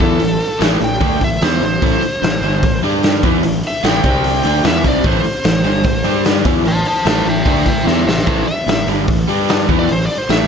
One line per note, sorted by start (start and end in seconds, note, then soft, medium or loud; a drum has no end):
0.00 0.19 E2 medium
0.00 0.19 E3 medium
0.00 0.20 B3 medium
0.00 0.20 E4 medium
0.00 0.60 A4 loud
0.00 kick loud
0.00 open hi-hat soft
0.20 0.39 A1 medium
0.20 0.36 A2 medium
0.20 0.36 E3 medium
0.20 open hi-hat medium
0.40 open hi-hat soft
0.59 0.79 A1 medium
0.59 0.79 A2 medium
0.59 0.79 E3 medium
0.59 0.80 A3 medium
0.59 snare loud
0.59 open hi-hat medium
0.80 0.99 A1 medium
0.80 0.97 A2 medium
0.80 0.97 E3 medium
0.80 1.22 G5 medium
0.80 open hi-hat medium
1.00 1.20 D2 loud
1.00 1.20 D3 medium
1.00 1.21 A3 medium
1.00 1.21 D4 medium
1.00 kick loud
1.00 open hi-hat medium
1.21 1.40 A1 medium
1.21 1.37 A2 medium
1.21 1.38 E3 medium
1.21 1.42 E5 medium
1.21 kick medium
1.21 open hi-hat medium
1.41 1.60 E2 medium
1.41 1.62 E3 medium
1.41 1.62 B3 medium
1.41 1.62 E4 medium
1.41 1.62 C5 medium
1.41 snare loud
1.41 open hi-hat medium
1.61 1.80 A1 medium
1.61 1.78 A2 medium
1.61 1.78 E3 medium
1.61 2.81 C5 medium
1.61 open hi-hat medium
1.82 2.01 A1 medium
1.82 2.01 A2 medium
1.82 2.02 E3 medium
1.82 2.02 A3 loud
1.82 kick loud
1.82 open hi-hat medium
2.02 muted fingered electric bass stroke soft
2.02 muted overdriven electric guitar stroke medium
2.02 open hi-hat medium
2.22 2.41 A1 medium
2.22 2.39 A2 medium
2.22 2.39 E3 medium
2.22 snare loud
2.22 open hi-hat medium
2.42 2.61 G1 medium
2.42 2.62 G2 medium
2.42 2.63 D3 loud
2.42 2.63 G3 medium
2.42 open hi-hat medium
2.63 2.81 A1 medium
2.63 2.79 A2 medium
2.63 2.79 E3 medium
2.63 kick loud
2.63 open hi-hat medium
2.82 3.20 G2 medium
2.82 3.22 G3 medium
2.82 3.23 D4 loud
2.82 3.23 G4 loud
2.82 open hi-hat medium
3.03 snare loud
3.03 open hi-hat medium
3.23 3.42 E2 medium
3.23 3.43 E3 medium
3.23 3.43 B3 medium
3.23 3.44 E4 medium
3.23 kick loud
3.23 open hi-hat medium
3.43 3.62 A1 medium
3.43 3.59 A2 medium
3.43 3.60 E3 medium
3.43 open hi-hat medium
3.63 3.87 E5 medium
3.63 open hi-hat medium
3.84 4.02 A1 medium
3.84 4.03 A2 loud
3.84 4.03 E3 medium
3.84 4.04 A3 loud
3.84 4.63 G5 medium
3.84 snare loud
3.84 open hi-hat medium
4.04 4.41 C2 medium
4.04 4.44 C3 medium
4.04 4.44 G3 medium
4.04 4.44 C4 loud
4.04 kick loud
4.04 open hi-hat medium
4.24 open hi-hat medium
4.43 4.63 D2 medium
4.43 4.63 D3 medium
4.43 4.64 A3 loud
4.43 4.64 D4 loud
4.43 open hi-hat medium
4.63 4.83 E2 medium
4.63 4.83 E3 medium
4.63 4.84 B3 medium
4.63 4.84 E4 medium
4.63 4.85 E5 medium
4.63 snare loud
4.63 open hi-hat medium
4.84 5.03 C2 loud
4.84 5.04 C3 medium
4.84 5.04 G3 medium
4.84 5.04 C4 medium
4.84 5.06 D5 loud
4.84 kick medium
4.84 open hi-hat medium
5.04 5.23 A1 medium
5.04 5.23 A2 loud
5.04 5.24 E3 loud
5.04 5.25 A3 medium
5.04 6.23 C5 loud
5.04 kick loud
5.04 open hi-hat medium
5.24 muted fingered electric bass stroke soft
5.24 muted overdriven electric guitar stroke medium
5.24 open hi-hat medium
5.44 5.63 A1 medium
5.44 5.61 A2 medium
5.44 5.61 E3 medium
5.44 snare loud
5.44 open hi-hat medium
5.64 5.83 G1 medium
5.64 5.84 G2 medium
5.64 5.84 D3 medium
5.64 5.84 G3 loud
5.64 open hi-hat medium
5.84 6.03 A1 medium
5.84 6.01 A2 medium
5.84 6.01 E3 medium
5.84 kick loud
5.84 open hi-hat medium
6.04 6.42 G2 medium
6.04 6.44 G3 medium
6.04 6.44 D4 loud
6.04 6.45 G4 loud
6.04 open hi-hat medium
6.25 snare loud
6.25 open hi-hat medium
6.45 6.64 E2 medium
6.45 6.63 E3 medium
6.45 6.64 B3 medium
6.45 6.65 E4 loud
6.45 kick loud
6.45 open hi-hat medium
6.64 6.84 A1 medium
6.64 6.81 A2 medium
6.64 6.81 E3 medium
6.64 6.86 C5 medium
6.64 6.86 A5 medium
6.64 open hi-hat medium
6.85 7.05 C5 medium
6.85 7.06 A5 medium
6.85 open hi-hat medium
7.05 7.24 A1 medium
7.05 7.24 A2 medium
7.05 7.24 E3 loud
7.05 7.25 A3 loud
7.05 7.25 C5 medium
7.05 7.26 A5 medium
7.05 snare loud
7.05 open hi-hat medium
7.25 7.44 A1 medium
7.25 7.42 A2 medium
7.25 7.42 E3 medium
7.25 7.46 E5 medium
7.25 open hi-hat medium
7.30 7.47 G5 medium
7.45 7.65 D2 loud
7.45 7.65 D3 medium
7.45 7.65 A3 medium
7.45 7.65 D4 loud
7.45 7.66 E5 medium
7.45 kick loud
7.45 open hi-hat medium
7.49 7.67 G5 medium
7.65 7.85 A1 medium
7.65 7.82 A2 medium
7.65 7.82 E3 medium
7.65 7.86 E5 medium
7.65 7.87 G5 medium
7.65 kick medium
7.65 open hi-hat medium
7.84 8.05 E2 loud
7.84 8.05 E3 medium
7.84 8.05 B3 medium
7.84 8.06 E4 medium
7.84 8.06 C5 medium
7.84 8.06 E5 medium
7.84 snare medium
8.06 8.25 A1 medium
8.06 8.22 A2 medium
8.06 8.22 E3 medium
8.06 8.26 C5 medium
8.06 8.27 E5 medium
8.06 snare loud
8.18 snare medium
8.26 8.46 A1 medium
8.26 8.46 A2 medium
8.26 8.46 E3 medium
8.26 8.47 A3 loud
8.26 8.46 C5 medium
8.26 8.46 E5 medium
8.26 kick loud
8.26 open hi-hat medium
8.46 8.86 E5 medium
8.46 muted fingered electric bass stroke soft
8.46 muted overdriven electric guitar stroke medium
8.46 open hi-hat soft
8.66 8.85 A1 medium
8.66 8.83 A2 medium
8.66 8.83 E3 medium
8.66 snare loud
8.66 open hi-hat medium
8.87 9.06 G1 medium
8.87 9.07 G2 medium
8.87 9.07 D3 loud
8.87 9.08 G3 loud
8.87 open hi-hat medium
9.08 9.27 A1 medium
9.08 9.24 A2 medium
9.08 9.24 E3 medium
9.08 kick loud
9.08 open hi-hat medium
9.28 9.65 G2 medium
9.28 9.68 G3 loud
9.28 9.68 D4 medium
9.28 9.68 G4 loud
9.28 open hi-hat medium
9.49 snare loud
9.49 open hi-hat medium
9.68 9.87 E2 medium
9.68 9.88 E3 medium
9.68 9.88 B3 loud
9.68 9.88 E4 loud
9.68 kick loud
9.68 open hi-hat medium
9.79 9.90 D5 loud
9.89 10.08 A1 medium
9.89 10.05 A2 medium
9.89 10.05 E3 medium
9.89 10.03 C5 loud
9.89 open hi-hat medium
10.06 10.18 D5 medium
10.06 open hi-hat soft
10.18 10.30 C5 medium
10.29 10.47 A1 medium
10.29 10.47 A2 medium
10.29 10.47 E3 loud
10.29 10.47 A3 loud
10.29 10.47 E5 medium
10.29 snare loud
10.29 open hi-hat medium